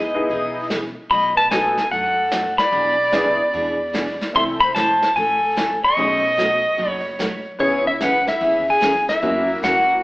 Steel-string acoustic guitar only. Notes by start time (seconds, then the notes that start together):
0.30 E3 B3 D#4 G#4
0.71 E3 B3 D#4 G#4
1.10 B2 F#3 A3 D#4 F#4
1.51 B2 F#3 A3 D#4 F#4
1.92 B2 F#3 A3 D#4 F#4
2.31 B2 F#3 A3 D#4 F#4
2.72 B2 E3 B3 D4 G#4
3.13 B2 E3 B3 D4 G#4
3.54 B2 E3 B3 D4 G#4
3.94 B2 E3 B3 D4 G#4
4.34 C3 E3 A3 E4 A4
4.76 C3 E3 A3 E4 A4
5.16 C3 E3 A3 E4 A4
5.56 C3 E3 A3 E4 A4
5.97 B2 F#3 A3 D#4 F#4
6.37 B2 F#3 A3 D#4 F#4
6.77 B2 F#3 A3 D#4 F#4
7.19 B2 F#3 A3 D#4 F#4
7.59 C#3 E3 B3 C#4 G#4
8.00 C#3 E3 B3 C#4 G#4
8.41 C#3 E3 B3 C#4 G#4
8.80 C#3 E3 B3 C#4 G#4
9.21 C#3 E3 A#3 C#4 F#4
9.63 C#3 E3 A#3 C#4 F#4